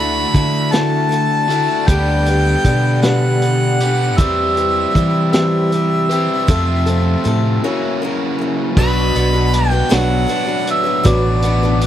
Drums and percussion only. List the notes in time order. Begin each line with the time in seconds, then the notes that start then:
0.34 kick, closed hi-hat
0.73 snare, closed hi-hat
1.12 closed hi-hat
1.50 closed hi-hat
1.88 kick, closed hi-hat
2.26 closed hi-hat
2.65 kick, closed hi-hat
3.02 snare, closed hi-hat
3.42 closed hi-hat
3.80 closed hi-hat
4.18 kick, closed hi-hat
4.57 closed hi-hat
4.95 kick, closed hi-hat
5.33 snare, closed hi-hat
5.72 closed hi-hat
6.11 closed hi-hat
6.48 kick, closed hi-hat
6.87 closed hi-hat
7.25 closed hi-hat
8.77 kick, crash
9.15 closed hi-hat
9.53 closed hi-hat
9.91 snare, closed hi-hat
10.29 closed hi-hat
10.67 closed hi-hat
11.05 kick, closed hi-hat
11.42 closed hi-hat
11.81 closed hi-hat